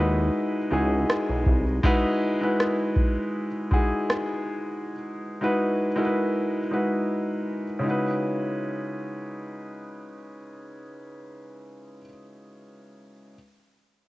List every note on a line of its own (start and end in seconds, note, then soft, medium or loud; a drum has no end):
0.00 0.30 D#2 medium
0.00 0.70 G#3 medium
0.00 0.71 D#4 medium
0.00 0.72 E4 medium
0.00 0.72 F#4 medium
0.00 1.86 B4 loud
0.00 downlifter medium
0.70 1.05 C#2 loud
0.70 1.63 G#3 medium
0.70 1.63 D#4 medium
0.70 1.63 E4 medium
0.70 1.64 F#4 medium
0.70 1.64 G#4 medium
1.10 cross-stick loud
1.29 1.45 B1 medium
1.46 1.80 C2 medium
1.46 kick medium
1.83 2.29 G#3 loud
1.83 2.30 D#4 loud
1.83 2.30 E4 loud
1.83 2.30 F#4 loud
1.83 2.31 B4 loud
1.83 kick medium
2.41 3.46 G#3 medium
2.41 3.47 D#4 medium
2.41 3.47 E4 medium
2.41 3.47 F#4 medium
2.41 3.48 B4 loud
2.60 cross-stick medium
2.96 kick medium
3.71 4.93 G#3 medium
3.71 4.93 D#4 medium
3.71 4.93 E4 medium
3.71 4.94 F#4 medium
3.71 4.94 G#4 medium
3.71 kick medium
4.10 cross-stick loud
5.41 5.86 G#3 medium
5.41 5.86 D#4 medium
5.41 5.87 E4 medium
5.41 5.87 F#4 medium
5.41 5.87 B4 loud
5.96 6.57 G#3 medium
5.96 6.58 D#4 medium
5.96 6.58 E4 medium
5.96 6.58 F#4 medium
5.96 6.04 A#4 medium
6.05 6.62 B4 medium
6.71 7.63 G#3 medium
6.71 7.63 D#4 medium
6.71 7.64 E4 medium
6.71 7.64 F#4 medium
6.71 7.64 B4 medium
7.79 11.97 C#3 medium
7.79 11.99 G#3 medium
7.83 12.01 D#4 medium
7.83 12.03 E4 medium
7.88 12.05 F#4 medium
7.88 12.08 B4 medium